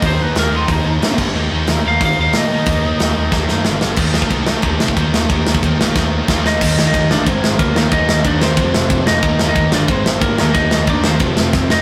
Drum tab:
CC |--------------x-|----------------|----------------|x---------------|
RD |----------------|----------------|----------------|----x---x---x---|
HH |o---o---o---o---|----o---o---o---|o---o-----------|----------------|
SD |----o-------o---|----o-------o---|----o---o-o-o-o-|--o---o---o---o-|
BD |o-------o-----o-|--------o-------|o-------o-------|o--oo---o--oo---|

CC |----------------|x---------------|----------------|----------------|
RD |x---x-----------|----x---x---x---|x---x---x---x---|x---x---x---x---|
HH |----------------|----------------|----------------|----------------|
SD |--o---o-o---o-o-|--o---o---o---o-|--o---o---o---o-|--o---o---o---o-|
BD |o--oo---o---o---|o---o---o---o---|o---o---o---o---|o---o---o---o---|

CC |----------------|
RD |x---x---x-------|
HH |----------------|
SD |--o---o---o-o-o-|
BD |o---o---o---o---|